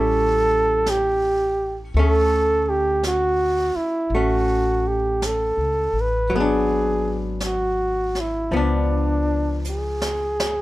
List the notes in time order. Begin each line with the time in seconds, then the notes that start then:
Already playing: A1 G3 C#4 E4 A4
0.86 brush sweep, snare, hi-hat pedal
0.90 G4
1.94 D2 A3, brush sweep
1.99 C#4 A4
2.70 G4
3.03 F#4, brush sweep, snare, hi-hat pedal
3.76 E4, muted upright bass stroke
4.10 A1, brush sweep
4.15 A3 C#4 F#4
4.88 G4
5.22 brush sweep, snare, hi-hat pedal
5.26 A4
5.57 C#2
5.93 A1
6.01 B4
6.30 G#1 F#3, brush sweep
6.36 B3 G#4
6.40 D4
7.40 brush sweep, snare, hi-hat pedal
7.45 F#4
8.15 snare
8.20 E4
8.51 C#2 F3 B3, brush sweep
8.57 D4
9.65 hi-hat pedal
9.70 G#4
10.01 snare
10.40 snare